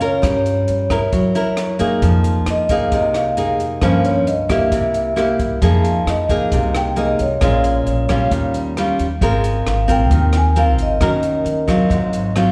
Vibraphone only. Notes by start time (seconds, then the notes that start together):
0.05 C#5
2.50 D#5
2.72 F5
2.95 D#5
3.16 F5
3.82 C5
4.05 C#5
4.28 D#5
4.51 E5
6.10 D#5
6.32 F5
6.76 G5
6.98 D#5
7.21 C#5
9.70 F5
9.91 G5
10.37 G#5
10.59 F5
10.82 D#5